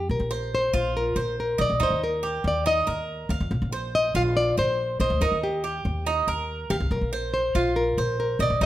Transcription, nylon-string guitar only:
Already playing: G4
0.11 A#4
0.55 C5
0.97 A#4
1.40 A#4
1.61 D5
1.83 C5
2.04 A#4
2.48 D5
2.67 D#5
3.95 D#5
4.17 F5
4.37 D5
4.59 C5
5.01 C5
5.22 A#4
5.44 G4
6.70 G4
6.92 A#4
7.34 C5
7.76 A#4
8.20 A#4
8.42 D5

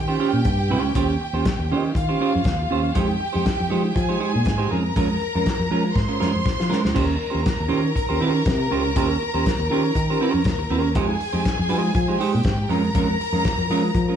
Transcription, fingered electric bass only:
Already playing: D#3
0.33 A#2
0.45 G2
0.70 C#2
0.96 D#2
1.33 D#2
1.59 D#2
1.72 D#3
1.95 D#3
2.35 F2
2.45 D#2
2.71 D#2
2.96 F2
3.35 F2
3.60 F2
3.71 F3
3.96 F3
4.35 A#2
4.46 G#2
4.71 F2
4.97 F2
5.35 F2
5.59 F2
5.71 F3
5.95 G#2
6.21 F2
6.35 F2
6.60 F3
6.85 C#2
6.96 D#2
7.34 D#2
7.60 D#2
7.72 D#3
8.10 D#2
8.22 D#3
8.46 C3
8.71 C#2
8.96 D#2
9.34 D#2
9.59 D#2
9.70 D#3
9.96 D#3
10.34 F2
10.45 D#2
10.70 D#2
10.95 F2
11.33 F2
11.59 F2
11.70 F3
11.95 F3
12.34 A#2
12.45 G#2
12.69 F2
12.95 F2
13.32 F2
13.57 F2
13.70 F3
13.95 F3

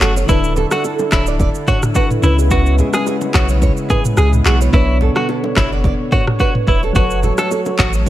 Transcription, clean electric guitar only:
0.01 F#4
0.29 E4
0.72 F#4
1.12 E4
1.68 F#4
1.96 F#4
2.24 E4
2.51 F#4
2.94 G#4
3.35 F#4
3.90 G#4
4.18 G#4
4.46 F#4
4.74 E4
5.17 F#4
5.57 E4
6.12 F#4
6.40 F#4
6.68 E4
6.96 F#4
7.39 A4
7.79 F#4

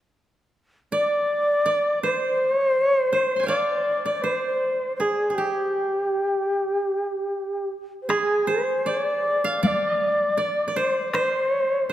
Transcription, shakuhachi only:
0.93 D5
2.03 C5
2.54 C#5
2.67 C5
2.82 C#5
2.96 C5
3.48 D5
4.15 D5
4.22 C5
4.96 C5
5.01 G#4
5.34 G4
8.02 C5
8.09 G#4
8.49 C5
8.89 D5
9.63 D5 F5
10.76 C5
11.13 C5

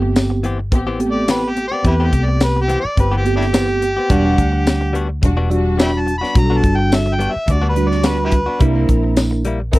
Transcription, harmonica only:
1.11 D5
1.31 B4
1.49 G4
1.68 D5
1.87 E4 G4 B4
2.05 G4
2.25 D5
2.43 B4
2.62 G4
2.80 D5
3.00 B4
3.18 G4
3.36 D4 E4 G4
5.82 E5 G5 B5
6.00 A5
6.18 B5
6.38 A#5
6.57 A5
6.76 G5
6.95 E5
7.14 G5
7.32 E5
7.51 D5
7.70 B4
7.88 D5
8.06 B4
8.25 E4 G4 B4

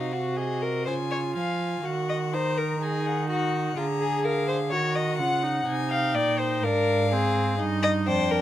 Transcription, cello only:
Already playing: C3
0.86 C#3
1.36 F3
1.84 D#3
3.77 D3
4.71 D#3
5.19 C#3
5.66 C3
6.14 A#2
6.62 G#2
7.59 G2
8.07 F2

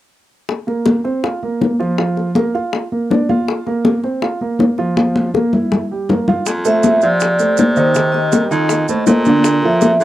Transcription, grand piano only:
0.67 A#3 A#4
1.04 C4 C5
1.23 F4 F5
1.43 A#3 A#4
1.80 F3 F4
1.98 F3 F4
2.35 A#3 A#4
2.55 F4 F5
2.92 A#3 A#4
3.10 D4 D5
3.29 F4 F5
3.67 A#3 A#4
4.04 C4 C5
4.23 F4 F5
4.41 A#3 A#4
4.78 F3 F4
4.97 F3 F4
5.34 A#3 A#4
5.53 E4 E5
5.91 G3 G4
6.10 A#3 A#4
6.28 F4 F5
6.65 A3 A4 C5
7.03 F3 F4 F5
7.39 A3 A4 C5
7.77 D#3 D#4 D#5
7.95 D#3 D#4 D#5
8.31 G3 G4 A#4
8.51 D#3 D#4 D#5
8.89 A3 A4 C5
9.08 A3 A4 C5
9.26 D3 D4 D5
9.64 F3 F4 A4
10.00 D3 D4 D5

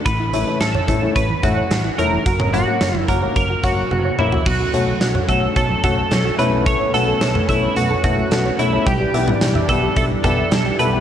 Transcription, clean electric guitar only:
0.06 B4
0.61 A4
1.16 B4
1.43 F#4
1.98 A#4
2.54 F#4
2.99 E4
3.09 A#4
3.36 A#4
3.64 F#4
4.19 E4
4.46 F#4
5.29 A4
5.56 A4
5.84 A4
6.39 B4
6.66 C#5
6.94 A4
7.49 E4
7.77 F#4
8.04 F#4
8.59 E4
8.87 G4
9.69 A4
9.97 A4
10.24 A4
10.79 B4

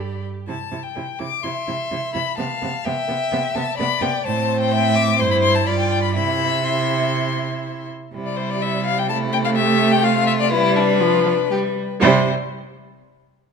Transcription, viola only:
0.00 G4
0.47 E4
0.72 E4
0.95 E4
1.19 E4
1.44 E4
1.67 E4
1.91 E4
2.13 E4
2.37 B3
2.61 B3
2.85 B3
3.08 B3
3.31 B3
3.55 B3
3.79 B3
4.02 B3
4.25 C4
5.18 E4
5.68 F4
6.16 E4
6.65 E4
8.14 G3
9.09 A3
10.52 G3
11.00 F3
11.25 F3
11.50 G3
12.00 G3

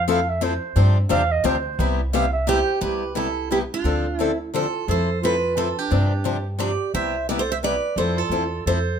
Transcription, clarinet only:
0.08 F5
0.29 E5
0.43 C5
1.10 F5
1.32 D#5
1.45 C5
2.14 F5
2.33 E5
2.49 C5
2.82 G4
3.15 E4
3.50 E4
3.73 D4
4.18 C#4
4.53 F4
4.87 A4
5.21 F4
5.56 F4
5.78 D4
6.59 G4
6.94 C5
7.29 B4
7.40 A4
7.51 C5
7.62 B4
7.97 A4
8.17 F4
8.66 A4

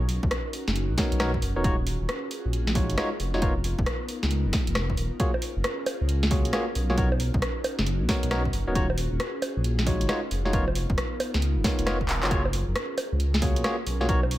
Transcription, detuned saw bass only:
Already playing: B1
0.23 B1
0.68 F#1
0.90 B1
1.12 B1
1.42 F#1
1.56 D#1
2.01 D#1
2.45 A#1
2.90 F#1
3.20 F1
3.79 F1
4.23 C#2
4.45 F1
4.68 F1
4.98 D#1
5.56 F#1
6.01 C#2
6.45 A#1
6.75 B1
7.34 B1
7.79 F#1
8.01 B1
8.23 B1
8.53 F#1
8.68 D#1
9.12 D#1
9.56 A#1
10.01 F#1
10.31 F1
10.90 F1
11.34 C#2
11.57 F1
11.79 F1
12.09 D#1
12.23 F#1
12.68 F#1
13.12 C#2
13.56 A#1
13.86 B1

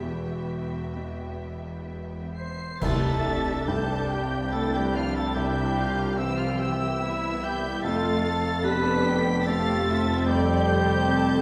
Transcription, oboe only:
2.37 C5
2.81 A4
3.67 G4
4.52 A4
4.74 G4
4.94 F4
5.15 A4
5.35 G4
6.17 E4
6.37 F4
6.59 E4
7.43 G4
7.84 A4
8.64 B4
9.46 A4
10.27 G4

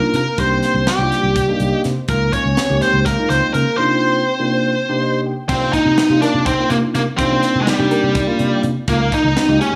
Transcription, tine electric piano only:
Already playing: A#3 D4 D#4 F4
0.38 A#3 D4 D#4 G4
1.00 A#3 D4 D#4 F4
1.48 A#3 D4 D#4 G4
1.62 G5
1.72 D#5
1.85 C5
2.08 G#3 A#3 D#4 F4
2.69 G#3 A#3 D#4 G4
3.17 G#3 A#3 D#4 F4
3.79 C3 A#3 D4 D#4 F4
4.39 C3 A#3 D4 D#4 F4
4.89 C3 A#3 D4 D#4 G4
5.01 D#5
5.26 G5
5.50 A#3 D4 D#4 F4
6.11 A#3 D4 D#4 F4
6.59 A#3 D4 D#4 F4
7.18 A#3 D4 D#4 F4
7.79 A#3 D4 D#4 G4
8.27 A#3 D4 D#4 F4
8.88 G#3 A#3 D#4 F4
9.48 G#3 A#3 D#4 G4

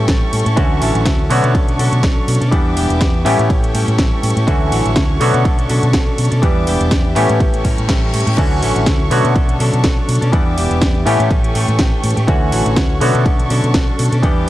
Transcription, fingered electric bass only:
0.08 A1
0.33 A2
0.46 A2
0.57 D2
0.82 A1
0.95 A1
1.30 B2
1.44 B2
1.55 B1
1.79 B2
1.93 B2
2.04 B1
2.28 B2
2.41 B2
2.52 E2
2.77 E1
2.90 E1
3.01 E2
3.26 A2
3.39 A2
3.50 A1
3.74 A2
3.88 A2
3.99 A1
4.23 A2
4.37 A2
4.48 D2
4.72 A1
4.85 A1
4.96 D2
5.21 B2
5.34 B2
5.45 B1
5.70 B2
5.83 B2
5.94 B1
6.18 B2
6.32 B2
6.43 E2
6.67 E1
6.81 E1
7.16 A2
7.30 A2
7.40 A1
7.65 A2
7.78 A2
7.89 A1
8.14 A2
8.27 A2
8.38 D2
8.62 A1
8.76 A1
8.87 D2
9.11 B2
9.25 B2
9.36 B1
9.60 B2
9.73 B2
9.84 B1
10.09 B2
10.22 B2
10.33 E2
10.57 E1
10.71 E1
11.06 A2
11.20 A2
11.31 A1
11.55 A2
11.68 A2
11.79 A1
12.04 A2
12.17 A2
12.28 D2
12.52 A1
12.66 A1
13.01 B2
13.15 B2
13.26 B1
13.50 B2
13.64 B2
13.74 B1
13.99 B2
14.12 B2
14.23 E2

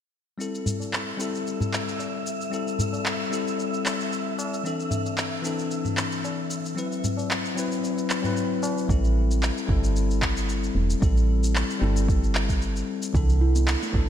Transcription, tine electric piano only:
0.38 G3 C4 E4 A4
1.17 G3 C4 E4 A4
2.50 G3 C4 E4 A4
3.30 G3 C4 E4
3.34 A4
4.64 E3 C4 D4 A4
5.42 E3 C4 D4
5.46 A4
6.75 F#3 C4 E4 B4
7.55 F#3 C4 E4
7.59 B4
8.22 F#3 C4 E4
8.26 B4
8.88 G3 C4 E4 A4
9.67 G3 C4 E4
9.72 A4
11.00 G3 C4 E4 A4
11.79 G3 C4 E4
11.84 A4
13.13 E3 D4 A4
13.92 E3 D4 A4

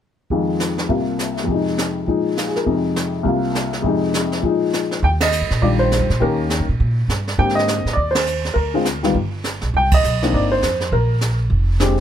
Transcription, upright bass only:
5.03 D#2
5.42 G2
5.51 A#2
5.62 A#1
5.99 F2
6.10 A#2
6.21 D#2
6.59 G2
6.69 A#2
6.80 A#2
7.08 G2
7.38 G#2
7.85 A2
7.97 D#2
8.55 D2
9.14 G1
9.62 B1
9.74 C2
10.04 B1
10.33 G1
10.63 F2
10.92 A#1
11.50 F1

